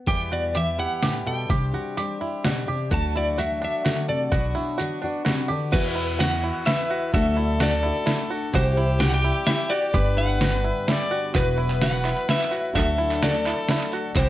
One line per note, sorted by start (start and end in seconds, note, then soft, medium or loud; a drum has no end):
0.07 0.50 E2 medium
0.07 0.84 E2 medium
0.07 0.55 E2 medium
0.07 0.56 B2 medium
0.07 0.53 E3 medium
0.07 0.55 G3 medium
0.07 0.55 B3 medium
0.07 0.31 G4 medium
0.07 0.57 G4 medium
0.07 0.32 G5 medium
0.07 kick loud
0.07 closed hi-hat medium
0.32 1.50 B3 medium
0.32 0.55 F#4 medium
0.32 0.57 D5 medium
0.54 0.78 E3 medium
0.54 0.98 E3 medium
0.54 0.79 G3 soft
0.54 0.78 B3 medium
0.54 0.78 G4 medium
0.54 0.76 G4 medium
0.54 0.78 E5 medium
0.54 closed hi-hat medium
0.78 1.00 E3 soft
0.78 1.02 G3 soft
0.78 1.03 B3 soft
0.78 1.02 E4 medium
0.78 1.02 G4 soft
0.78 1.48 G4 medium
0.78 1.23 F#5 medium
1.01 1.26 A2 medium
1.01 1.49 E3 medium
1.01 1.49 G3 medium
1.01 1.51 B3 medium
1.01 1.26 G4 medium
1.01 1.51 G4 soft
1.01 snare medium
1.01 closed hi-hat medium
1.26 1.49 B2 medium
1.26 1.50 A4 medium
1.26 1.71 G5 medium
1.49 1.69 C2 medium
1.49 1.92 C3 medium
1.49 1.97 C3 medium
1.49 1.96 G3 medium
1.49 1.97 C4 medium
1.49 1.99 D4 medium
1.49 1.73 G4 medium
1.49 1.98 G4 medium
1.49 kick loud
1.49 closed hi-hat medium
1.73 1.97 F#4 medium
1.73 2.20 G4 medium
1.97 2.42 G3 medium
1.97 2.40 G3 medium
1.97 2.43 C4 medium
1.97 2.45 D4 medium
1.97 2.20 G4 medium
1.97 2.46 G4 medium
1.97 closed hi-hat medium
2.21 2.44 E4 medium
2.21 2.89 G4 medium
2.44 2.68 B2 medium
2.44 2.68 G3 medium
2.44 2.68 C4 medium
2.44 2.68 D4 medium
2.44 2.68 F#4 medium
2.44 2.66 G4 medium
2.44 snare medium
2.44 closed hi-hat medium
2.67 2.92 C3 medium
2.67 2.91 C4 soft
2.67 2.91 D4 soft
2.67 2.91 G4 medium
2.90 3.68 D2 medium
2.90 3.38 D3 medium
2.90 3.34 D3 medium
2.90 3.36 F#3 medium
2.90 3.36 A3 medium
2.90 3.38 A3 medium
2.90 3.39 D4 medium
2.90 4.31 D4 medium
2.90 3.15 F#4 medium
2.90 3.40 F#4 medium
2.90 3.16 F#4 medium
2.90 3.15 A5 medium
2.90 kick loud
2.90 closed hi-hat medium
3.15 3.38 E4 medium
3.15 3.63 F#4 medium
3.15 3.39 D5 medium
3.37 3.84 F#3 medium
3.37 3.84 A3 medium
3.37 3.81 A3 medium
3.37 3.85 D4 medium
3.37 3.61 F#4 medium
3.37 3.87 F#4 medium
3.37 3.61 E5 medium
3.37 closed hi-hat medium
3.62 3.84 D4 medium
3.62 5.03 F#4 medium
3.62 4.09 E5 medium
3.84 4.09 D3 medium
3.84 4.32 F#3 medium
3.84 4.33 A3 medium
3.84 4.33 D4 medium
3.84 4.08 F#4 medium
3.84 4.34 F#4 medium
3.84 snare medium
3.84 closed hi-hat medium
4.08 4.32 C3 medium
4.08 4.31 A4 medium
4.08 4.53 D5 medium
4.32 4.51 B1 medium
4.32 4.79 B2 medium
4.32 4.75 B2 medium
4.32 4.78 F#3 medium
4.32 4.78 B3 medium
4.32 4.79 D4 medium
4.32 4.55 F#4 medium
4.32 4.80 F#4 medium
4.32 kick loud
4.32 closed hi-hat medium
4.55 5.71 D4 medium
4.55 4.78 E4 medium
4.78 5.22 D3 medium
4.78 5.03 F#3 medium
4.78 5.03 B3 medium
4.78 5.03 D4 medium
4.78 5.01 F#4 medium
4.78 closed hi-hat medium
5.02 5.24 D4 medium
5.02 5.27 D4 soft
5.02 5.26 F#4 medium
5.02 5.71 F#4 medium
5.06 5.26 B3 soft
5.25 5.50 C3 medium
5.25 5.50 F#3 medium
5.25 5.50 B3 medium
5.25 5.50 D4 medium
5.25 5.49 F#4 medium
5.25 snare medium
5.25 closed hi-hat medium
5.29 5.48 F#4 medium
5.48 5.73 D3 medium
5.48 5.74 D4 soft
5.48 5.73 F#4 medium
5.48 5.72 G4 medium
5.53 5.73 B3 soft
5.71 6.20 E2 medium
5.71 7.10 E2 medium
5.71 6.49 E2 loud
5.71 6.20 B2 medium
5.71 7.09 E3 medium
5.71 6.19 E3 medium
5.71 7.10 B3 medium
5.71 6.20 B3 medium
5.71 7.10 E4 medium
5.71 6.17 E4 medium
5.71 6.21 E4 medium
5.71 5.96 F#4 medium
5.71 7.11 F#4 medium
5.71 6.23 F#4 medium
5.71 6.21 B4 medium
5.71 7.12 E5 medium
5.71 kick loud
5.71 closed hi-hat medium
5.71 crash loud
5.95 6.19 E4 medium
6.19 6.65 E3 medium
6.19 6.66 B3 medium
6.19 6.68 E4 medium
6.19 6.43 F#4 medium
6.19 6.69 F#4 medium
6.19 6.66 F#5 medium
6.19 snare medium
6.19 closed hi-hat medium
6.23 6.68 F#4 medium
6.44 6.66 E4 medium
6.66 7.13 E3 medium
6.66 7.14 B3 medium
6.66 6.90 E4 medium
6.66 7.15 E4 medium
6.66 7.15 F#4 medium
6.66 7.13 B4 medium
6.66 7.13 E5 medium
6.66 snare medium
6.66 closed hi-hat medium
6.90 7.13 F#4 medium
7.13 7.89 D2 loud
7.13 8.50 D2 medium
7.13 7.61 D3 medium
7.13 8.50 D3 medium
7.13 7.58 F#3 medium
7.13 7.83 A3 medium
7.13 7.60 A3 medium
7.13 7.83 D4 medium
7.13 7.61 D4 medium
7.13 7.37 F#4 medium
7.13 7.84 F#4 medium
7.13 7.62 F#4 medium
7.13 8.50 A4 loud
7.13 7.84 D5 medium
7.13 7.62 E5 loud
7.13 kick loud
7.13 closed hi-hat medium
7.37 7.60 E4 medium
7.60 7.83 F#3 medium
7.60 7.84 A3 medium
7.60 7.83 D4 medium
7.60 7.83 F#4 medium
7.60 7.82 F#4 medium
7.60 8.28 D5 medium
7.60 snare medium
7.60 closed hi-hat medium
7.83 8.54 A3 soft
7.83 8.06 A3 soft
7.83 8.54 D4 soft
7.83 8.07 D4 soft
7.83 8.05 E4 medium
7.83 8.07 F#4 soft
7.83 8.55 F#4 soft
7.83 8.55 D5 soft
8.06 8.30 F#3 medium
8.06 8.31 A3 medium
8.06 8.30 D4 medium
8.06 8.30 E4 medium
8.06 8.28 F#4 medium
8.06 snare medium
8.06 closed hi-hat medium
8.29 8.54 A3 soft
8.29 8.54 D4 medium
8.29 8.53 F#4 medium
8.52 9.90 C2 medium
8.52 9.30 C2 loud
8.52 9.00 C3 medium
8.52 9.90 C3 medium
8.52 8.99 E3 medium
8.52 9.90 G3 medium
8.52 9.01 G3 medium
8.52 9.91 C4 medium
8.52 9.92 E4 medium
8.52 9.01 E4 medium
8.52 8.77 F#4 medium
8.52 9.96 G4 loud
8.52 9.03 G4 medium
8.52 8.98 C5 medium
8.52 9.92 C5 medium
8.52 kick loud
8.52 closed hi-hat medium
8.77 9.00 E4 medium
9.00 9.24 E3 medium
9.00 9.24 G3 medium
9.00 9.24 E4 medium
9.00 9.24 F#4 medium
9.00 9.22 G4 medium
9.00 9.08 G5 medium
9.00 snare medium
9.00 closed hi-hat medium
9.09 9.14 F#5 medium
9.14 9.46 G5 loud
9.23 9.46 G3 soft
9.23 9.46 E4 medium
9.23 9.48 E4 soft
9.23 9.47 G4 soft
9.46 9.70 E3 medium
9.46 9.71 G3 medium
9.46 9.70 E4 medium
9.46 9.71 E4 medium
9.46 9.69 G4 medium
9.46 9.71 E5 loud
9.46 snare medium
9.46 closed hi-hat medium
9.70 9.93 G3 soft
9.70 9.94 E4 soft
9.70 9.94 F#4 medium
9.70 9.94 G4 medium
9.70 10.14 D5 medium
9.93 10.70 G1 loud
9.93 11.31 G1 medium
9.93 10.41 G2 medium
9.93 11.31 G2 medium
9.93 10.41 D3 medium
9.93 11.31 G3 medium
9.93 10.40 G3 medium
9.93 11.32 B3 medium
9.93 10.42 B3 medium
9.93 10.41 D4 medium
9.93 11.32 D4 medium
9.93 10.17 G4 loud
9.93 10.42 G4 medium
9.93 10.90 B4 loud
9.93 11.33 B4 medium
9.93 kick loud
9.93 closed hi-hat medium
10.17 10.40 E4 medium
10.17 10.84 F#5 medium
10.41 10.85 G3 medium
10.41 10.87 B3 medium
10.41 10.87 D4 medium
10.41 10.64 F#4 medium
10.41 10.89 G4 medium
10.41 snare medium
10.41 closed hi-hat medium
10.64 10.87 E4 medium
10.86 11.10 G3 medium
10.86 11.11 B3 medium
10.86 11.11 D4 medium
10.86 11.11 E4 medium
10.86 11.09 G4 medium
10.86 11.34 D5 loud
10.86 snare medium
10.86 closed hi-hat medium
11.10 11.35 G3 soft
11.10 11.35 B3 soft
11.10 11.35 D4 soft
11.10 11.33 F#4 medium
11.10 11.34 G4 medium
11.33 12.11 E1 loud
11.33 11.81 E2 medium
11.33 12.71 E2 medium
11.33 11.82 B2 medium
11.33 12.72 F#3 medium
11.33 11.81 F#3 medium
11.33 12.72 B3 medium
11.33 11.82 B3 medium
11.33 12.73 E4 medium
11.33 11.83 E4 medium
11.33 11.58 F#4 medium
11.33 11.84 F#4 medium
11.33 12.72 B4 loud
11.33 11.84 B4 medium
11.33 12.73 B4 medium
11.33 kick loud
11.33 clap loud
11.33 closed hi-hat medium
11.58 11.81 E4 medium
11.70 clap medium
11.81 12.27 F#3 medium
11.81 12.29 B3 medium
11.81 12.30 E4 medium
11.81 12.05 F#4 medium
11.81 12.30 F#4 medium
11.81 12.30 F#5 medium
11.81 snare medium
11.81 closed hi-hat medium
12.05 12.27 E4 medium
12.05 clap medium
12.18 clap soft
12.28 12.52 F#3 medium
12.28 12.53 B3 medium
12.28 12.52 E4 medium
12.28 12.50 F#4 medium
12.28 12.75 E5 loud
12.28 snare medium
12.28 closed hi-hat medium
12.41 clap medium
12.51 12.75 F#3 soft
12.51 12.76 B3 soft
12.51 12.76 E4 soft
12.51 12.74 F#4 medium
12.51 12.75 F#4 medium
12.51 clap soft
12.73 14.12 D2 medium
12.73 13.51 D2 loud
12.73 14.12 D3 medium
12.73 13.22 D3 medium
12.73 14.12 F#3 medium
12.73 13.21 F#3 medium
12.73 14.13 A3 medium
12.73 13.23 A3 medium
12.73 14.14 D4 medium
12.73 12.98 F#4 medium
12.73 14.12 A4 loud
12.73 14.14 A4 medium
12.73 13.24 E5 loud
12.73 kick loud
12.73 clap medium
12.73 closed hi-hat medium
12.78 13.23 D4 medium
12.78 13.24 F#4 medium
12.98 13.22 E4 medium
13.12 clap medium
13.22 13.68 F#3 medium
13.22 13.69 A3 medium
13.22 13.70 D4 medium
13.22 13.45 F#4 medium
13.22 13.71 F#4 medium
13.22 13.89 D5 medium
13.22 snare medium
13.22 closed hi-hat medium
13.46 13.69 E4 medium
13.46 clap loud
13.58 clap soft
13.69 14.16 F#3 medium
13.69 14.16 A3 medium
13.69 14.16 D4 medium
13.69 13.93 E4 medium
13.69 14.17 F#4 medium
13.69 snare medium
13.69 closed hi-hat medium
13.81 clap medium
13.93 14.15 F#4 medium
13.93 clap soft
14.14 14.29 C2 loud
14.14 14.29 C2 medium
14.14 14.29 C3 medium
14.14 14.29 E3 medium
14.14 14.29 G3 medium
14.14 14.29 C4 medium
14.14 14.29 E4 medium
14.14 14.29 F#4 medium
14.14 14.29 G4 medium
14.14 14.29 C5 medium
14.14 kick loud
14.14 clap medium
14.14 closed hi-hat medium